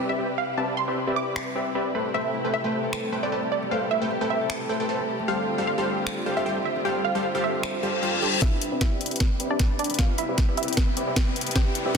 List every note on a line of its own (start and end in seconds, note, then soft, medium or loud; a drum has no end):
0.00 1.91 C3 medium
0.00 1.91 G3 medium
0.00 5.24 E4 medium
0.00 1.91 G4 medium
0.00 1.91 B4 medium
0.09 0.16 C4 medium
0.09 0.16 G4 medium
0.09 0.16 B4 medium
0.09 0.16 D5 medium
0.09 0.27 E5 medium
0.09 0.16 E5 medium
0.18 0.31 C4 medium
0.18 0.31 G4 medium
0.18 0.31 B4 medium
0.18 0.31 D5 medium
0.18 0.31 G5 medium
0.38 0.51 F5 medium
0.58 0.85 C4 medium
0.58 0.85 G4 medium
0.58 0.85 B4 medium
0.58 0.85 D5 medium
0.58 0.85 E5 medium
0.58 0.70 A5 medium
0.77 1.01 C6 medium
0.88 0.99 C4 medium
0.88 0.99 G4 medium
0.88 0.99 B4 medium
0.88 0.99 D5 medium
0.88 0.99 E5 medium
1.07 1.53 C4 medium
1.07 1.53 G4 medium
1.07 1.53 B4 medium
1.07 1.53 D5 medium
1.07 1.53 E5 loud
1.16 2.07 D6 medium
1.36 finger snap medium
1.56 1.73 C4 medium
1.56 1.73 G4 medium
1.56 1.73 B4 medium
1.56 1.73 D5 medium
1.56 1.73 E5 medium
1.75 1.93 C4 medium
1.75 1.93 G4 medium
1.75 1.93 B4 medium
1.75 1.93 D5 medium
1.75 1.93 E5 loud
1.95 5.25 C3 medium
1.95 5.25 G3 medium
1.95 2.12 A3 medium
1.95 5.25 A3 medium
1.95 8.38 G4 medium
1.95 2.12 A4 medium
1.95 2.12 B4 medium
1.95 2.12 C5 medium
1.95 2.12 B5 medium
2.14 2.44 A3 medium
2.14 2.42 A3 medium
2.14 2.42 A4 medium
2.14 2.42 B4 medium
2.14 2.42 C5 medium
2.14 2.39 E5 loud
2.14 2.42 G5 medium
2.34 3.03 E4 medium
2.45 2.56 A3 medium
2.45 2.64 A3 medium
2.45 2.56 A4 medium
2.45 2.56 B4 medium
2.45 2.56 C5 medium
2.45 2.56 G5 medium
2.54 3.32 G4 medium
2.54 2.72 E5 loud
2.64 3.10 A3 medium
2.64 2.92 A3 medium
2.64 3.10 A4 medium
2.64 3.10 B4 medium
2.64 3.10 C5 medium
2.64 3.10 G5 loud
2.84 3.51 A4 medium
2.93 3.12 A3 medium
2.93 finger snap medium
3.03 3.91 E4 medium
3.12 3.20 A3 medium
3.12 3.42 A3 medium
3.12 3.20 A4 medium
3.12 3.20 B4 medium
3.12 3.20 C5 medium
3.12 3.20 G5 medium
3.23 3.30 A3 medium
3.23 3.30 A4 medium
3.23 3.30 B4 medium
3.23 3.30 C5 medium
3.23 3.41 D5 medium
3.23 3.30 G5 medium
3.32 3.45 A3 medium
3.32 4.10 G4 medium
3.32 3.45 A4 medium
3.32 3.45 B4 medium
3.32 3.44 C5 medium
3.32 3.45 A5 medium
3.43 3.62 A3 medium
3.52 4.40 A4 medium
3.52 3.64 D5 medium
3.62 3.71 A3 loud
3.71 4.01 A3 medium
3.71 3.99 A3 medium
3.71 3.99 A4 medium
3.71 3.99 B4 medium
3.71 3.99 C5 medium
3.71 3.84 F5 medium
3.71 3.99 G5 medium
3.91 4.60 E4 medium
3.91 4.15 E5 medium
4.02 4.21 A3 medium
4.02 4.13 A3 medium
4.02 4.13 A4 medium
4.02 4.13 B4 medium
4.02 4.13 C5 medium
4.02 4.13 G5 loud
4.11 4.89 G4 loud
4.21 4.67 A3 medium
4.21 4.49 A3 medium
4.21 4.67 A4 medium
4.21 4.67 B4 medium
4.21 4.67 C5 medium
4.21 4.67 G5 loud
4.30 5.21 E5 medium
4.41 5.08 A4 medium
4.50 4.69 A3 medium
4.50 finger snap medium
4.60 5.54 E4 medium
4.69 4.77 A3 medium
4.69 4.99 A3 medium
4.69 4.77 A4 medium
4.69 4.77 B4 medium
4.69 4.77 C5 medium
4.69 4.77 G5 medium
4.80 4.87 A3 medium
4.80 4.87 A4 medium
4.80 4.87 B4 medium
4.80 4.87 C5 medium
4.80 4.87 G5 medium
4.89 5.01 A3 medium
4.89 5.67 G4 medium
4.89 5.01 A4 medium
4.89 5.01 B4 medium
4.89 5.01 C5 medium
4.89 5.01 A5 medium
5.00 5.19 A3 medium
5.09 7.28 A4 medium
5.19 8.52 A3 medium
5.28 8.39 D3 medium
5.28 5.56 G3 medium
5.28 8.39 G3 medium
5.28 8.39 C4 medium
5.28 5.58 C4 medium
5.28 8.39 F4 medium
5.28 5.56 G4 medium
5.28 5.56 A4 medium
5.28 5.56 C5 medium
5.28 5.56 F5 medium
5.28 5.52 F5 medium
5.48 6.17 F4 medium
5.58 5.70 G3 medium
5.58 5.78 C4 medium
5.58 5.70 G4 medium
5.58 5.70 A4 medium
5.58 5.70 C5 medium
5.58 5.70 F5 loud
5.67 6.45 G4 medium
5.67 5.85 F5 medium
5.78 6.24 G3 medium
5.78 6.06 C4 medium
5.78 6.24 G4 medium
5.78 6.24 A4 medium
5.78 6.24 C5 medium
5.78 6.24 F5 loud
5.98 6.65 C5 medium
6.07 finger snap medium
6.17 7.04 F4 medium
6.26 6.34 G3 medium
6.26 6.56 C4 medium
6.26 6.34 G4 medium
6.26 6.34 A4 medium
6.26 6.34 C5 medium
6.26 6.34 F5 medium
6.37 6.44 G3 medium
6.37 6.44 G4 medium
6.37 6.44 A4 medium
6.37 6.44 C5 medium
6.37 6.55 E5 medium
6.37 6.44 F5 medium
6.46 6.58 G3 medium
6.46 7.24 G4 medium
6.46 6.58 G4 medium
6.46 6.58 A4 medium
6.46 6.58 C5 medium
6.46 6.58 G5 medium
6.56 6.75 C4 medium
6.65 7.54 C5 medium
6.65 6.78 E5 medium
6.76 6.85 C4 medium
6.85 7.13 G3 medium
6.85 7.15 C4 medium
6.85 7.13 G4 medium
6.85 7.13 A4 medium
6.85 7.13 C5 medium
6.85 7.13 F5 medium
6.85 6.98 G5 medium
7.05 7.73 F4 medium
7.05 7.29 F5 medium
7.15 7.26 G3 medium
7.15 7.34 C4 medium
7.15 7.26 G4 medium
7.15 7.26 A4 medium
7.15 7.26 C5 medium
7.15 7.26 F5 loud
7.24 8.81 G4 medium
7.35 7.81 G3 medium
7.35 7.63 C4 medium
7.35 7.81 G4 medium
7.35 7.81 A4 medium
7.35 7.81 C5 medium
7.35 7.81 F5 loud
7.44 8.35 E5 medium
7.54 8.48 C5 medium
7.63 8.13 C4 medium
7.63 finger snap medium
7.63 reverse cymbal medium
7.74 7.83 F4 medium
7.83 8.00 G3 medium
7.83 8.02 F4 medium
7.83 8.00 G4 medium
7.83 8.00 A4 medium
7.83 8.00 C5 medium
7.83 8.00 F5 medium
8.03 8.20 G3 medium
8.03 8.67 F4 medium
8.03 8.20 G4 medium
8.03 8.20 A4 medium
8.03 8.20 C5 medium
8.03 8.20 F5 loud
8.13 8.32 C4 medium
8.22 8.40 G3 medium
8.22 11.02 D4 medium
8.22 8.40 G4 medium
8.22 8.40 A4 medium
8.22 8.40 C5 medium
8.22 8.40 A5 medium
8.33 8.48 C4 medium
8.42 11.97 C3 medium
8.42 11.97 G3 medium
8.42 8.70 C4 medium
8.42 8.66 E4 medium
8.42 11.97 E4 medium
8.42 8.70 G4 medium
8.42 11.97 G4 medium
8.42 8.70 B4 medium
8.42 11.97 B4 medium
8.42 8.66 E5 loud
8.42 kick medium
8.42 snare soft
8.42 closed hi-hat medium
8.42 riser medium
8.61 9.30 E4 medium
8.61 closed hi-hat medium
8.72 8.91 B3 medium
8.72 8.83 C4 medium
8.72 8.83 G4 medium
8.72 8.83 B4 medium
8.72 8.83 D5 medium
8.72 8.83 E5 loud
8.81 8.99 E4 medium
8.81 9.59 G4 medium
8.81 8.99 E5 medium
8.81 kick medium
8.81 snare soft
8.81 closed hi-hat medium
8.92 9.20 B3 medium
8.92 9.38 C4 medium
8.92 9.38 G4 medium
8.92 9.38 B4 medium
8.92 9.38 D5 medium
8.92 9.38 E5 loud
9.01 closed hi-hat soft
9.06 closed hi-hat medium
9.11 9.79 B4 medium
9.11 closed hi-hat soft
9.16 closed hi-hat medium
9.20 kick medium
9.20 snare soft
9.20 closed hi-hat medium
9.31 10.18 E4 medium
9.40 9.70 B3 medium
9.40 9.48 C4 medium
9.40 9.48 G4 medium
9.40 9.48 B4 medium
9.40 9.48 D5 medium
9.40 9.48 E5 medium
9.40 closed hi-hat medium
9.50 9.57 C4 medium
9.50 9.68 D4 medium
9.50 9.57 G4 medium
9.50 9.57 B4 medium
9.50 9.57 D5 medium
9.50 9.68 D5 medium
9.50 9.57 E5 medium
9.59 10.38 G4 medium
9.59 kick medium
9.59 snare medium
9.59 closed hi-hat medium
9.70 9.89 B3 medium
9.79 9.92 D4 medium
9.79 10.68 B4 medium
9.79 9.92 D5 medium
9.79 closed hi-hat soft
9.84 closed hi-hat medium
9.90 9.98 B3 loud
9.90 closed hi-hat soft
9.94 closed hi-hat medium
9.99 10.26 C4 medium
9.99 10.11 F4 medium
9.99 10.26 G4 medium
9.99 10.26 B4 medium
9.99 10.26 D5 medium
9.99 10.26 E5 medium
9.99 10.11 F5 medium
9.99 kick medium
9.99 snare medium
9.99 closed hi-hat medium
10.18 10.87 E4 medium
10.18 10.43 E4 medium
10.18 10.43 E5 medium
10.18 closed hi-hat medium
10.29 10.48 B3 medium
10.29 10.40 C4 medium
10.29 10.40 G4 medium
10.29 10.40 B4 medium
10.29 10.40 D5 medium
10.29 10.40 E5 loud
10.38 11.16 G4 medium
10.38 kick loud
10.38 snare medium
10.38 closed hi-hat medium
10.49 10.77 B3 medium
10.49 10.95 C4 medium
10.49 10.95 G4 medium
10.49 10.95 B4 medium
10.49 10.95 D5 medium
10.49 10.95 E5 loud
10.57 11.48 E4 medium
10.57 11.48 E5 medium
10.57 closed hi-hat soft
10.63 closed hi-hat medium
10.68 11.36 B4 medium
10.68 closed hi-hat soft
10.73 closed hi-hat medium
10.77 kick medium
10.77 snare medium
10.77 closed hi-hat medium
10.88 11.75 E4 medium
10.97 11.27 B3 medium
10.97 11.05 C4 medium
10.97 11.05 G4 medium
10.97 11.05 B4 medium
10.97 11.05 D5 medium
10.97 11.05 E5 medium
10.97 closed hi-hat medium
11.07 11.14 C4 medium
11.07 11.14 G4 medium
11.07 11.14 B4 medium
11.07 11.14 D5 medium
11.07 11.14 E5 medium
11.16 11.29 C4 medium
11.16 11.29 G4 medium
11.16 11.29 B4 medium
11.16 11.29 D5 medium
11.16 11.29 G5 medium
11.16 kick loud
11.16 snare medium
11.16 closed hi-hat medium
11.27 11.46 B3 medium
11.36 11.97 B4 medium
11.36 closed hi-hat soft
11.41 closed hi-hat medium
11.47 11.55 B3 loud
11.47 closed hi-hat soft
11.51 closed hi-hat medium
11.56 11.85 B3 medium
11.56 11.83 C4 medium
11.56 11.83 G4 medium
11.56 11.80 G4 medium
11.56 11.83 B4 medium
11.56 11.83 D5 medium
11.56 11.83 E5 medium
11.56 11.80 G5 loud
11.56 kick medium
11.56 snare medium
11.56 closed hi-hat medium
11.75 11.97 E4 medium
11.75 closed hi-hat medium
11.86 11.97 B3 medium
11.86 11.97 C4 medium
11.86 11.97 G4 medium
11.86 11.97 B4 medium
11.86 11.97 D5 medium
11.86 11.97 E5 medium